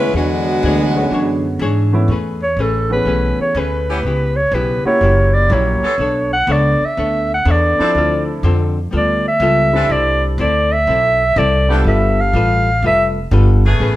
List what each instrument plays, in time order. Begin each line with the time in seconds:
Already playing: upright bass D2, trombone section E3 G#3 B3, saxophone section G#3 C#4 E4 B4
0.13 upright bass E2, trombone section B2 D3 F#3, saxophone section D3 G#3 B3 F#4, hollow-body jazz guitar E3 D4 G#4 C#5
0.63 upright bass D2, hollow-body jazz guitar E3 D4 G#4 C#5
0.95 grand piano D3 G#3 B3 C#4 F#4
1.11 upright bass F#2, hollow-body jazz guitar E3 D4 G#4 C#5
1.59 upright bass G#2, hollow-body jazz guitar E3 D4 G#4 C#5
1.93 grand piano E3 A3 B3 C#4 E4
2.08 upright bass E2, hollow-body jazz guitar A3 C#4 G#4
2.12 hollow-body jazz guitar B4
2.43 clarinet C#5
2.57 upright bass A1, hollow-body jazz guitar A3 C#4 G#4 B4
2.61 clarinet A4
2.90 grand piano E3 A3 B3 C#4 G#4, clarinet B4
3.05 upright bass B1, hollow-body jazz guitar A3 C#4 G#4 B4
3.38 clarinet C#5, muted upright bass stroke
3.55 upright bass D2, hollow-body jazz guitar A3 C#4 G#4 B4
3.59 clarinet B4
3.88 saxophone section E3 B3 C#4 G4
4.03 upright bass C#2, hollow-body jazz guitar C#3 B3 E4
4.08 hollow-body jazz guitar G4
4.36 clarinet C#5
4.52 upright bass B1, hollow-body jazz guitar C#3 B3 E4 G4, clarinet B4
4.85 grand piano A#3 C#4 E4 F#4 G4, clarinet C#5, muted upright bass stroke
5.01 upright bass F#1, hollow-body jazz guitar F#3 A#3 E4 G4
5.34 clarinet D5
5.49 upright bass A#1, grand piano F#3 A#3 C#4 E4 G4, hollow-body jazz guitar F#3 A#3 E4 G4, clarinet C#5
5.82 saxophone section D3 B3 C#4 A4, muted upright bass stroke
5.98 upright bass B1, hollow-body jazz guitar B3 D4 A4
6.02 hollow-body jazz guitar C#5
6.33 clarinet F#5
6.47 upright bass C#2, hollow-body jazz guitar B3 D4 A4 C#5
6.52 clarinet D5
6.81 muted upright bass stroke
6.85 clarinet E5
6.97 upright bass D2, hollow-body jazz guitar B3 D4 A4 C#5
7.34 clarinet F#5
7.45 upright bass E2, hollow-body jazz guitar B3 D4 A4 C#5
7.51 clarinet D5
7.78 grand piano F3 C4 D4 E4 A4, saxophone section F3 C4 D4 A4, muted upright bass stroke
7.95 upright bass D2, hollow-body jazz guitar D3 C4 F4 A4
8.43 upright bass F2, hollow-body jazz guitar D3 C4 F4 A4
8.91 upright bass D2, hollow-body jazz guitar G3 B3 F4 A4
8.97 clarinet D5
9.28 clarinet E5
9.40 upright bass C#2, hollow-body jazz guitar G3 B3 F4 A4
9.72 saxophone section E3 C4 D4 A4, grand piano G3 C4 D4 E4 A4
9.89 upright bass C2, hollow-body jazz guitar C4 E4 A4 D5, clarinet D5
10.38 upright bass D2, hollow-body jazz guitar C4 E4 A4 D5, clarinet D5
10.72 clarinet E5
10.87 upright bass B1, hollow-body jazz guitar C4 E4 A4 D5
11.36 upright bass C2, hollow-body jazz guitar C4 E4 A4 D5, clarinet D5
11.69 saxophone section F3 A3 B3 G4, grand piano G3 B3 D4 F4 A4
11.84 upright bass G1, hollow-body jazz guitar G3 F4 A4, clarinet E5
11.88 hollow-body jazz guitar B4
12.20 clarinet F5
12.33 upright bass A1, hollow-body jazz guitar G3 F4 A4 B4
12.82 upright bass F1, hollow-body jazz guitar G3 F4 A4 B4
12.87 clarinet E5
13.31 upright bass G1, hollow-body jazz guitar G3 F4 A4 B4, grand piano G3 B3 D4 F4 A4
13.65 saxophone section C#3 A3 B3 G#4
13.79 upright bass A1, hollow-body jazz guitar A3 C#4 G#4 B4